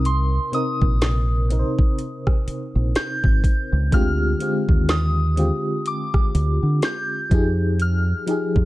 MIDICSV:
0, 0, Header, 1, 6, 480
1, 0, Start_track
1, 0, Key_signature, -4, "minor"
1, 0, Tempo, 967742
1, 26, Time_signature, 4, 2, 24, 8
1, 4291, End_track
2, 0, Start_track
2, 0, Title_t, "Synth bell"
2, 0, Program_c, 0, 98
2, 30, Note_on_c, 0, 84, 91
2, 270, Note_on_c, 0, 87, 94
2, 275, Note_off_c, 0, 84, 0
2, 1448, Note_off_c, 0, 87, 0
2, 1470, Note_on_c, 0, 91, 97
2, 1928, Note_off_c, 0, 91, 0
2, 1953, Note_on_c, 0, 89, 96
2, 2409, Note_off_c, 0, 89, 0
2, 2430, Note_on_c, 0, 87, 97
2, 2888, Note_off_c, 0, 87, 0
2, 2913, Note_on_c, 0, 86, 89
2, 3396, Note_on_c, 0, 91, 93
2, 3404, Note_off_c, 0, 86, 0
2, 3877, Note_on_c, 0, 89, 91
2, 3885, Note_off_c, 0, 91, 0
2, 4291, Note_off_c, 0, 89, 0
2, 4291, End_track
3, 0, Start_track
3, 0, Title_t, "FM electric piano"
3, 0, Program_c, 1, 5
3, 0, Control_c, 1, 64, 127
3, 0, Note_on_c, 1, 48, 79
3, 0, Note_on_c, 1, 60, 75
3, 0, Note_on_c, 1, 63, 70
3, 0, Note_on_c, 1, 70, 86
3, 181, Note_off_c, 1, 48, 0
3, 185, Note_off_c, 1, 60, 0
3, 187, Note_off_c, 1, 63, 0
3, 191, Note_off_c, 1, 70, 0
3, 257, Note_on_c, 1, 48, 79
3, 263, Note_on_c, 1, 60, 70
3, 270, Note_on_c, 1, 63, 69
3, 277, Note_on_c, 1, 70, 81
3, 596, Note_off_c, 1, 48, 0
3, 599, Note_off_c, 1, 60, 0
3, 603, Note_off_c, 1, 63, 0
3, 606, Note_off_c, 1, 70, 0
3, 739, Note_on_c, 1, 48, 72
3, 745, Note_on_c, 1, 60, 69
3, 752, Note_on_c, 1, 63, 70
3, 757, Note_on_c, 1, 70, 68
3, 789, Note_off_c, 1, 70, 0
3, 790, Note_on_c, 1, 72, 81
3, 1398, Note_off_c, 1, 48, 0
3, 1401, Note_off_c, 1, 60, 0
3, 1405, Note_off_c, 1, 63, 0
3, 1423, Note_off_c, 1, 72, 0
3, 1939, Note_on_c, 1, 50, 76
3, 1944, Note_on_c, 1, 56, 76
3, 1948, Note_on_c, 1, 60, 71
3, 1952, Control_c, 1, 64, 0
3, 1953, Note_on_c, 1, 65, 69
3, 1958, Note_on_c, 1, 67, 85
3, 2035, Control_c, 1, 64, 127
3, 2116, Note_off_c, 1, 50, 0
3, 2119, Note_off_c, 1, 56, 0
3, 2120, Note_off_c, 1, 60, 0
3, 2123, Note_off_c, 1, 65, 0
3, 2125, Note_off_c, 1, 67, 0
3, 2177, Note_on_c, 1, 50, 78
3, 2182, Note_on_c, 1, 56, 72
3, 2187, Note_on_c, 1, 60, 70
3, 2192, Note_on_c, 1, 65, 71
3, 2196, Note_on_c, 1, 67, 83
3, 2516, Note_off_c, 1, 50, 0
3, 2519, Note_off_c, 1, 56, 0
3, 2521, Note_off_c, 1, 60, 0
3, 2523, Note_off_c, 1, 65, 0
3, 2526, Note_off_c, 1, 67, 0
3, 2658, Note_on_c, 1, 50, 74
3, 2662, Note_on_c, 1, 56, 71
3, 2668, Note_on_c, 1, 60, 66
3, 2673, Note_on_c, 1, 65, 71
3, 2676, Note_on_c, 1, 67, 87
3, 3318, Note_off_c, 1, 50, 0
3, 3320, Note_off_c, 1, 56, 0
3, 3322, Note_off_c, 1, 60, 0
3, 3325, Note_off_c, 1, 65, 0
3, 3327, Note_off_c, 1, 67, 0
3, 3619, Note_on_c, 1, 53, 81
3, 3626, Note_on_c, 1, 63, 74
3, 3632, Control_c, 1, 64, 0
3, 3633, Note_on_c, 1, 67, 72
3, 3638, Note_on_c, 1, 68, 87
3, 3727, Control_c, 1, 64, 127
3, 4022, Note_off_c, 1, 53, 0
3, 4025, Note_off_c, 1, 63, 0
3, 4029, Note_off_c, 1, 67, 0
3, 4031, Note_off_c, 1, 68, 0
3, 4099, Note_on_c, 1, 53, 81
3, 4106, Note_on_c, 1, 63, 73
3, 4112, Note_on_c, 1, 67, 69
3, 4119, Note_on_c, 1, 68, 89
3, 4291, Note_off_c, 1, 53, 0
3, 4291, Note_off_c, 1, 63, 0
3, 4291, Note_off_c, 1, 67, 0
3, 4291, Note_off_c, 1, 68, 0
3, 4291, End_track
4, 0, Start_track
4, 0, Title_t, "Fingered electric bass"
4, 0, Program_c, 2, 33
4, 0, Note_on_c, 2, 36, 106
4, 186, Note_off_c, 2, 36, 0
4, 405, Note_on_c, 2, 34, 89
4, 805, Note_off_c, 2, 34, 0
4, 1366, Note_on_c, 2, 34, 97
4, 1450, Note_off_c, 2, 34, 0
4, 1607, Note_on_c, 2, 32, 94
4, 1690, Note_off_c, 2, 32, 0
4, 1847, Note_on_c, 2, 37, 86
4, 1930, Note_off_c, 2, 37, 0
4, 1947, Note_on_c, 2, 38, 113
4, 2147, Note_off_c, 2, 38, 0
4, 2326, Note_on_c, 2, 39, 86
4, 2726, Note_off_c, 2, 39, 0
4, 3147, Note_on_c, 2, 38, 83
4, 3263, Note_off_c, 2, 38, 0
4, 3287, Note_on_c, 2, 50, 97
4, 3370, Note_off_c, 2, 50, 0
4, 3628, Note_on_c, 2, 41, 102
4, 4027, Note_off_c, 2, 41, 0
4, 4246, Note_on_c, 2, 41, 84
4, 4291, Note_off_c, 2, 41, 0
4, 4291, End_track
5, 0, Start_track
5, 0, Title_t, "Muted fingered electric bass strokes"
5, 1226, Note_on_c, 9, 29, 45
5, 1276, Note_off_c, 9, 29, 0
5, 4291, End_track
6, 0, Start_track
6, 0, Title_t, "Drums"
6, 26, Note_on_c, 9, 42, 74
6, 75, Note_off_c, 9, 42, 0
6, 264, Note_on_c, 9, 42, 66
6, 313, Note_off_c, 9, 42, 0
6, 404, Note_on_c, 9, 36, 97
6, 454, Note_off_c, 9, 36, 0
6, 504, Note_on_c, 9, 42, 76
6, 505, Note_on_c, 9, 38, 110
6, 553, Note_off_c, 9, 42, 0
6, 555, Note_off_c, 9, 38, 0
6, 746, Note_on_c, 9, 42, 62
6, 796, Note_off_c, 9, 42, 0
6, 886, Note_on_c, 9, 36, 104
6, 935, Note_off_c, 9, 36, 0
6, 985, Note_on_c, 9, 42, 60
6, 1034, Note_off_c, 9, 42, 0
6, 1125, Note_on_c, 9, 36, 97
6, 1125, Note_on_c, 9, 37, 92
6, 1175, Note_off_c, 9, 36, 0
6, 1175, Note_off_c, 9, 37, 0
6, 1228, Note_on_c, 9, 42, 70
6, 1278, Note_off_c, 9, 42, 0
6, 1465, Note_on_c, 9, 42, 79
6, 1468, Note_on_c, 9, 38, 119
6, 1515, Note_off_c, 9, 42, 0
6, 1517, Note_off_c, 9, 38, 0
6, 1606, Note_on_c, 9, 36, 90
6, 1655, Note_off_c, 9, 36, 0
6, 1705, Note_on_c, 9, 36, 91
6, 1708, Note_on_c, 9, 42, 62
6, 1755, Note_off_c, 9, 36, 0
6, 1758, Note_off_c, 9, 42, 0
6, 1946, Note_on_c, 9, 36, 117
6, 1946, Note_on_c, 9, 42, 72
6, 1995, Note_off_c, 9, 36, 0
6, 1996, Note_off_c, 9, 42, 0
6, 2184, Note_on_c, 9, 42, 67
6, 2234, Note_off_c, 9, 42, 0
6, 2324, Note_on_c, 9, 36, 97
6, 2374, Note_off_c, 9, 36, 0
6, 2424, Note_on_c, 9, 42, 76
6, 2426, Note_on_c, 9, 38, 111
6, 2474, Note_off_c, 9, 42, 0
6, 2475, Note_off_c, 9, 38, 0
6, 2665, Note_on_c, 9, 42, 68
6, 2715, Note_off_c, 9, 42, 0
6, 2905, Note_on_c, 9, 42, 62
6, 2955, Note_off_c, 9, 42, 0
6, 3045, Note_on_c, 9, 36, 100
6, 3046, Note_on_c, 9, 37, 93
6, 3095, Note_off_c, 9, 36, 0
6, 3095, Note_off_c, 9, 37, 0
6, 3149, Note_on_c, 9, 42, 72
6, 3198, Note_off_c, 9, 42, 0
6, 3385, Note_on_c, 9, 42, 77
6, 3387, Note_on_c, 9, 38, 115
6, 3434, Note_off_c, 9, 42, 0
6, 3437, Note_off_c, 9, 38, 0
6, 3626, Note_on_c, 9, 36, 111
6, 3628, Note_on_c, 9, 42, 61
6, 3676, Note_off_c, 9, 36, 0
6, 3677, Note_off_c, 9, 42, 0
6, 3866, Note_on_c, 9, 42, 70
6, 3916, Note_off_c, 9, 42, 0
6, 4104, Note_on_c, 9, 42, 68
6, 4154, Note_off_c, 9, 42, 0
6, 4245, Note_on_c, 9, 36, 95
6, 4291, Note_off_c, 9, 36, 0
6, 4291, End_track
0, 0, End_of_file